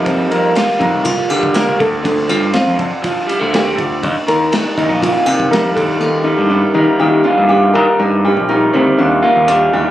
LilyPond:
<<
  \new Staff \with { instrumentName = "Nylon-string guitar" } { \time 4/4 \key ees \lydian \tempo 4 = 121 c'8 bes'8 g'8 ees'8 f'8 g'8 bes'8 a'8 | d'8 f'8 c'8 d'8 f'8 d'8 g'8 f'8 | d'8 bes'8 g'8 ees'8 f'8 g'8 bes'8 a'8 | f'8 ees'8 d'8 ees'8 g'8 d'8 g'8 bes'8 |
ees'8 g'8 ees'8 c'8 d'8 bes8 d'8 g'8 | }
  \new Staff \with { instrumentName = "Clean electric guitar" } { \clef bass \time 4/4 \key ees \lydian << { <g bes ees'>8 bes8 f'4. g8 bes8 r8 | r8 c'8 f'4. g16 a16 bes16 c'16 r8 | r4 d'8 ees'16 f'4~ f'16 g8 d'8 | r8 g4 g4 f'8 g8 d'8 |
r8 g4 g4 f'8 g8 d'8 | } \\ { <f, f>4. c8 f4. d8 | f4. d8 f4. d8 | ees,8 ees4. bes,8 ees4. | ees,4 ees4 bes,2 |
ees,4 ees4 bes,2 | } >> }
  \new Staff \with { instrumentName = "Picked electric bass" } { \clef bass \time 4/4 \key ees \lydian f,8 f,8 r8 f,16 c,8 r16 d8. c,16 d,8 | d,8 g,8 r16 f,8 r4 d,4~ d,16 | ees,16 r16 ees,8 r8 ees,16 bes,,8 r16 c8 f,8 ees,8 | ees,8. g,8 r16 ees16 r16 ees8 r16 g,8. ees16 r16 |
g,8. bes,,8. d,16 r16 ees,8 r16 ees,8. ees,16 r16 | }
  \new DrumStaff \with { instrumentName = "Drums" } \drummode { \time 4/4 <bd cymr>8 cymr8 <cymr sn>8 <bd cymr>8 <bd cymr>8 cymr16 bd16 <cymr sn>8 <bd cymr>8 | <bd cymr>8 cymr8 <cymr sn>8 <bd cymr>8 <bd cymr>8 cymr8 <cymr sn>8 <bd cymr>8 | <bd cymr>8 cymr8 <cymr sn>8 <bd cymr>8 <bd cymr>8 cymr16 bd16 <cymr sn>8 <bd cymr>8 | r4 r4 r4 r4 |
r4 r4 r4 r4 | }
>>